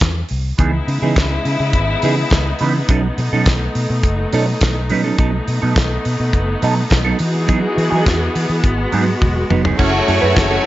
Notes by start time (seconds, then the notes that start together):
0.00 E2, kick, snare, closed hi-hat
0.29 C2, open hi-hat
0.58 C#2 C#3 E3 G#3 B3 D#4 E4 G#4, kick, closed hi-hat
0.73 muted clean electric guitar stroke
0.88 C#3, muted clean electric guitar stroke, open hi-hat
1.02 C#3 E3 B3 D#4 G#4
1.16 C#2, kick, snare, closed hi-hat
1.31 muted clean electric guitar stroke
1.45 C#3, open hi-hat
1.60 C#3, muted clean electric guitar stroke
1.73 G#1, kick, closed hi-hat
1.89 muted clean electric guitar stroke
2.02 C#3 E3 B3 D#4 G#4, open hi-hat
2.17 muted clean electric guitar stroke
2.30 C#2, muted clean electric guitar stroke, kick, snare, closed hi-hat
2.46 muted clean electric guitar stroke
2.59 C#3 E3 B3 D#4 B4, open hi-hat
2.76 muted clean electric guitar stroke
2.89 B1 F#3 A3 C#4 D#4 A4, kick, closed hi-hat
3.04 muted clean electric guitar stroke
3.18 B2, muted clean electric guitar stroke, open hi-hat
3.33 B2 F#3 C#4 D#4 A4
3.46 B1, kick, snare, closed hi-hat
3.61 muted clean electric guitar stroke
3.75 B2, open hi-hat
3.90 B2, muted clean electric guitar stroke
4.03 F#1, kick, closed hi-hat
4.18 muted clean electric guitar stroke
4.33 B2 F#3 C#4 D#4 A4, open hi-hat
4.48 muted clean electric guitar stroke
4.61 B1, muted clean electric guitar stroke, kick, snare, closed hi-hat
4.76 muted clean electric guitar stroke
4.90 B2 F#3 C#4 D#4 B4, open hi-hat
5.04 F#3 C#4 D#4 A4
5.18 B1 F#3 A3 B3 D#4 A4, kick, closed hi-hat
5.33 muted clean electric guitar stroke
5.47 B2, muted clean electric guitar stroke, open hi-hat
5.62 B2 F#3 B3 D#4 A4
5.76 B1, kick, snare, closed hi-hat
5.91 muted clean electric guitar stroke
6.05 B2, open hi-hat
6.20 B2, muted clean electric guitar stroke
6.33 F#1, kick, closed hi-hat
6.48 muted clean electric guitar stroke
6.62 B2 F#3 B3 D#4 A4, open hi-hat
6.77 muted clean electric guitar stroke
6.90 B1, muted clean electric guitar stroke, kick, snare, closed hi-hat
7.05 F#3 B3 D#4 A4
7.19 E3 B3 F#4 G#4, open hi-hat
7.34 muted clean electric guitar stroke
7.47 F#3 B3 D#4 G#4, kick, closed hi-hat
7.61 muted clean electric guitar stroke
7.76 E3, muted clean electric guitar stroke, open hi-hat
7.90 E3 F#3 B3 D#4 G#4
8.06 E2, kick, snare, closed hi-hat
8.20 muted clean electric guitar stroke
8.35 E3, open hi-hat
8.49 E3, muted clean electric guitar stroke
8.64 G#1 G#3 F#4, kick, closed hi-hat
8.78 muted clean electric guitar stroke
8.92 G#2 F#3 B3 D#4 G#4, open hi-hat
9.07 muted clean electric guitar stroke
9.21 E1, muted clean electric guitar stroke, kick, high tom
9.36 muted clean electric guitar stroke
9.50 F1 F#3 B3 D#4 B4, mid tom
9.64 F#3 B3 D#4 G#4, floor tom
9.77 F#1 F#3 A3 C#4 E4 F#4 G#4 A4 C#5, kick, crash
9.94 muted clean electric guitar stroke
10.07 F#2 A3 C#4 E4 A4, open hi-hat
10.22 F#2 A3 C#4 E4 B4
10.36 F#1, kick, snare, closed hi-hat
10.51 A3 C#4 E4 A4